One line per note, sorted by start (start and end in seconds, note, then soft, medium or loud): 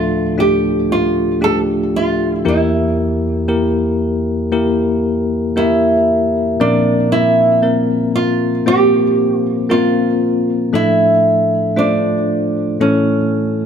0.00 2.41 D2 soft
0.00 2.41 A2 soft
0.00 2.47 F3 soft
0.00 0.37 A3 medium
0.00 0.38 D4 soft
0.00 0.35 F4 medium
0.00 2.47 A4 medium
0.37 1.36 A3 soft
0.37 1.36 D4 soft
0.37 1.36 F4 soft
0.37 1.37 G4 medium
0.37 0.92 G4 medium
0.92 1.39 F4 medium
1.41 2.40 A3 soft
1.41 2.40 D4 soft
1.41 2.40 F4 soft
1.41 2.40 G4 medium
1.41 1.58 A4 medium
1.96 2.34 F4 medium
2.34 2.48 E4 medium
2.45 6.55 E2 soft
2.45 6.55 E3 soft
2.45 3.43 A#3 medium
2.45 3.43 E4 medium
2.45 3.98 E4 medium
2.45 3.43 G4 soft
2.45 3.44 A#4 medium
3.48 4.46 A#3 soft
3.48 4.47 E4 soft
3.48 4.47 G4 soft
3.48 4.47 A#4 medium
4.52 5.50 A#3 medium
4.52 5.50 E4 soft
4.52 5.50 G4 medium
4.52 5.50 A#4 medium
5.56 6.54 A#3 soft
5.56 6.54 E4 soft
5.56 6.60 E4 medium
5.56 6.54 G4 soft
5.56 6.54 A#4 medium
6.60 10.69 A#2 medium
6.60 10.69 F3 medium
6.60 7.58 A#3 medium
6.60 7.58 C4 soft
6.60 7.12 D4 medium
6.60 7.58 A#4 medium
7.12 8.11 E4 medium
7.63 8.61 A#3 soft
7.63 8.61 C4 soft
7.63 8.61 A#4 medium
8.16 8.67 F4 medium
8.66 9.64 A#3 medium
8.66 9.64 C4 soft
8.66 9.64 F4 soft
8.66 9.37 G4 medium
8.66 9.64 C5 medium
9.37 9.66 F4 medium
9.69 10.67 A#3 medium
9.69 10.68 C4 soft
9.69 10.68 F4 soft
9.69 10.77 F4 medium
9.69 10.68 A#4 medium
10.73 12.76 A2 medium
10.73 11.71 F3 soft
10.73 11.71 A3 medium
10.73 11.71 D4 medium
10.73 11.73 E4 medium
10.73 11.71 A4 medium
11.77 12.74 A3 soft
11.77 12.74 D4 soft
11.77 12.77 D4 medium
11.77 12.75 F4 soft
11.77 12.75 C5 medium
12.81 13.66 A2 soft
12.81 13.66 E3 soft
12.81 13.66 A3 soft
12.81 13.66 C#4 soft
12.81 13.66 C#4 medium
12.81 13.66 E4 soft
12.81 13.66 A4 medium